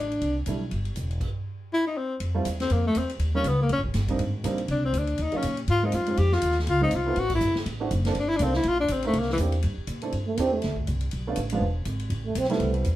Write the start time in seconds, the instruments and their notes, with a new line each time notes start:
Already playing: upright bass A1
0.00 tenor saxophone D4, trombone D4
0.12 ride
0.21 upright bass C2, ride
0.46 upright bass B1, grand piano G3 A3 D4 E4, hi-hat pedal, ride
0.71 upright bass G1, ride
0.85 ride
0.96 upright bass E1, hi-hat pedal, ride
1.11 ride
1.21 kick, crash
1.73 tenor saxophone E4
1.87 tenor saxophone D#4
1.97 tenor saxophone C4
2.20 upright bass F2, ride
2.35 grand piano G3 A3 C4 E4 F4
2.45 upright bass E2, hi-hat pedal, ride
2.60 tenor saxophone C4, snare, ride
2.70 upright bass F2, tenor saxophone A#3, ride
2.87 tenor saxophone A3
2.95 upright bass E2, tenor saxophone C4, hi-hat pedal, ride
3.09 ride
3.19 upright bass D#2, ride
3.35 grand piano G3 A#3 C#4 D#4 F4, tenor saxophone C#4
3.44 upright bass C#2, tenor saxophone B3, hi-hat pedal, ride
3.62 tenor saxophone A#3
3.69 upright bass A#1, tenor saxophone C#4, ride
3.78 upright bass G1
3.83 upright bass D#1, kick
3.94 upright bass G1, snare, hi-hat pedal, ride
4.08 grand piano G3 A#3 C4 D4 D#4, kick, ride
4.19 upright bass G#1, ride
4.44 upright bass A#1, grand piano G3 A#3 C4 D4 D#4, hi-hat pedal, ride
4.58 ride
4.68 upright bass C2, tenor saxophone D4, ride
4.85 tenor saxophone C4
4.93 upright bass D2, hi-hat pedal, ride
4.98 tenor saxophone D4
5.07 ride
5.18 upright bass D#2, ride
5.23 tenor saxophone D#4
5.32 grand piano F#3 A#3 C#4 D#4 F4, muted upright bass stroke, ride
5.37 tenor saxophone C#4
5.42 upright bass A#2, hi-hat pedal, ride
5.57 ride
5.68 upright bass G#2, tenor saxophone F4, ride
5.83 grand piano G#3 A#3 C4 D#4 F4, tenor saxophone D#4
5.92 upright bass F#2, tenor saxophone F4, hi-hat pedal, ride
6.06 grand piano G#3 C4 C#4 D#4 F4, ride
6.17 upright bass F2, tenor saxophone G4, ride
6.32 tenor saxophone F4, snare
6.42 upright bass D#2, hi-hat pedal, ride
6.51 snare
6.59 snare
6.67 upright bass C#2, tenor saxophone F4, ride
6.81 grand piano G#3 C4 C#4 D#4 F4, tenor saxophone D#4
6.91 upright bass C2, hi-hat pedal, ride
6.95 tenor saxophone F4
7.06 grand piano A3 B3 C4 E4 A4
7.16 upright bass A1, tenor saxophone F#4, ride
7.30 kick, crash
7.35 tenor saxophone E4
7.40 upright bass G1, hi-hat pedal
7.55 muted upright bass stroke, snare
7.66 upright bass A1, ride
7.80 grand piano A3 C4 D4 E4 F#4
7.91 upright bass F#1, hi-hat pedal, ride
8.05 grand piano A#3 C4 D4 F4 A4, snare, ride
8.15 upright bass G1, ride
8.19 tenor saxophone D4
8.29 tenor saxophone E4
8.36 upright bass C2, tenor saxophone D4, hi-hat pedal, ride
8.41 grand piano A#3 C4 D4 F4 A4, tenor saxophone C4
8.53 tenor saxophone E4, snare
8.63 upright bass A#1, ride
8.68 tenor saxophone F4
8.80 tenor saxophone D4
8.88 upright bass A1, tenor saxophone C4, hi-hat pedal, ride
9.03 grand piano A#3 C4 D4 E4 A#4, ride
9.07 tenor saxophone A3
9.13 upright bass C2, ride
9.19 tenor saxophone A#3, snare
9.30 tenor saxophone E3, snare
9.38 upright bass E2, grand piano A#3 C4 D4 E4 G4, hi-hat pedal, ride
9.52 ride
9.62 upright bass G2, ride
9.78 muted upright bass stroke
9.87 upright bass A#2, hi-hat pedal, ride
10.01 grand piano A3 C4 D4 E4 A4, ride
10.12 upright bass G2, ride
10.27 trombone A3
10.37 upright bass E2, grand piano A3 C4 D4 E4 G4, trombone C4, hi-hat pedal, ride
10.54 trombone A3
10.62 upright bass D2, snare, ride
10.76 kick
10.87 upright bass C2, hi-hat pedal, ride
11.01 ride
11.11 upright bass B1, ride
11.27 grand piano A3 B3 C#4 D4 F4
11.36 upright bass A1, hi-hat pedal, ride
11.50 grand piano F3 G#3 B3 D4, ride
11.54 grand piano F4
11.61 upright bass E1
11.85 upright bass G#1, hi-hat pedal, ride
11.99 ride
12.10 upright bass A1, ride
12.26 trombone A3
12.35 upright bass B1, trombone C4, hi-hat pedal, ride
12.44 snare
12.50 grand piano G3 A3 B3 C4 E4, trombone A3, snare, ride
12.60 upright bass C2, ride
12.74 ride
12.84 upright bass E2, hi-hat pedal, ride